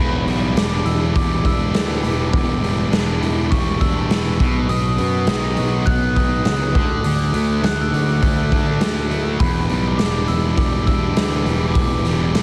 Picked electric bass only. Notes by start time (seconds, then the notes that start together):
Already playing: E1
0.26 B1
0.55 E1
0.85 E1
1.15 E1
1.73 D2
2.04 E1
2.33 E1
2.62 E1
2.91 E1
3.21 E1
3.52 E1
3.81 E1
4.11 E1
4.40 B1
4.69 B1
4.99 F#2
5.27 B1
5.59 B1
5.87 B1
6.46 C#2
6.75 D2
7.05 D2
7.34 D2
7.62 D2
7.93 D2
8.23 D2
8.52 D2
8.81 D2
9.40 E1
9.70 B1
9.99 E1
10.29 E1
10.57 E1
11.17 D2
11.46 E1
11.75 E1
12.04 E1
12.35 E1